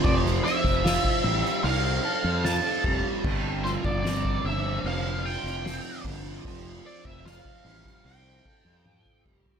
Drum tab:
CC |----------------|x---------------|----------------|
RD |x-x-x-x-x-x-x---|--x-x-x-x-x-x-x-|x-x-x-x-x-x-----|
SD |-oooo--o----o---|--o-o------oo---|----o--o--------|
T1 |----------------|----------------|------------o---|
FT |----------------|----------------|---------------o|
BD |o--o-o--------o-|o--o-o--------o-|o--o-o-o--o--oo-|